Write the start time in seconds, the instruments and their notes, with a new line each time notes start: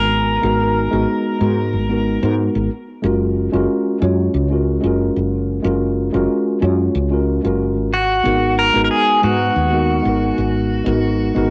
Already playing: fretless electric bass G#1, tine electric piano G#3 B3 D#4 F#4 A#4, pedal steel guitar A#4
0.41 fretless electric bass G#1, tine electric piano G#3 B3 D#4 F#4 A#4
0.91 fretless electric bass G#1, tine electric piano G#3 B3 D#4 F#4 A#4
1.39 fretless electric bass G#2, tine electric piano G#3 B3 D#4 F#4 A#4
1.73 fretless electric bass G#1
1.89 tine electric piano G#3 B3 D#4 F#4 A#4
2.22 fretless electric bass G#2, tine electric piano G#3 B3 D#4 F#4 A#4
2.55 fretless electric bass G#1
3.02 fretless electric bass F#1, tine electric piano G#3 C#4 F4 F#4 A#4
3.52 fretless electric bass F#1, tine electric piano G#3 C#4 F4 F#4 A#4
4.00 fretless electric bass F#2, tine electric piano G#3 C#4 F4 F#4 C#5
4.34 fretless electric bass C#2
4.50 tine electric piano G#3 C#4 F4 F#4 A#4
4.81 fretless electric bass F#1, tine electric piano G#3 C#4 F4
4.85 tine electric piano F#4 A#4
5.16 fretless electric bass F#1
5.62 fretless electric bass F#1, tine electric piano G#3 C#4 F4 F#4 A#4
6.12 fretless electric bass F#1, tine electric piano G#3 C#4 F4 F#4 A#4
6.60 fretless electric bass F#2, tine electric piano G#3 C#4 F4 F#4 C#5
6.95 fretless electric bass C#2
7.10 tine electric piano G#3 C#4 F4 F#4 A#4
7.43 fretless electric bass F#1, tine electric piano G#3 C#4 F4 F#4 A#4
7.77 fretless electric bass G#1
7.94 pedal steel guitar F#4
8.23 fretless electric bass G#1, tine electric piano G#3 B3 D#4 F#4 A#4
8.59 pedal steel guitar A#4
8.73 fretless electric bass G#1, tine electric piano G#3 B3 D#4 F#4 A#4
8.84 pedal steel guitar A#4
8.91 pedal steel guitar G#4
9.22 fretless electric bass G#2, tine electric piano G#3 B3 D#4 F#4 B4, pedal steel guitar F#4
9.56 fretless electric bass D#2
9.71 tine electric piano G#3 B3 D#4 F#4 A#4
10.02 fretless electric bass G#1, tine electric piano G#3 B3 D#4
10.07 tine electric piano F#4 A#4
10.38 fretless electric bass G#1
10.84 fretless electric bass G#1, tine electric piano G#3 B3 D#4 F#4 A#4
11.34 fretless electric bass G#1, tine electric piano G#3 B3 D#4 F#4 A#4